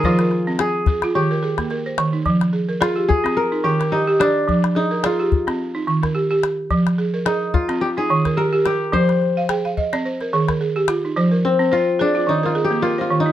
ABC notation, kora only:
X:1
M:4/4
L:1/16
Q:"Swing 16ths" 1/4=108
K:Fdor
V:1 name="Kora"
F4 A4 G4 z4 | z4 F2 A2 B2 G2 E2 D2- | D2 E2 F8- F2 z2 | z4 E2 F2 G A3 B2 G2 |
c12- c2 z2 | z2 C2 F2 D2 (3E2 F2 G2 (3F2 F2 E2 |]